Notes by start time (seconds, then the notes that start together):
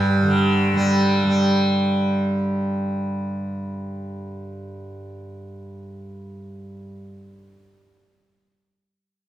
Already playing: G2 D3 G3
0.23 D3
0.74 G3
1.24 G3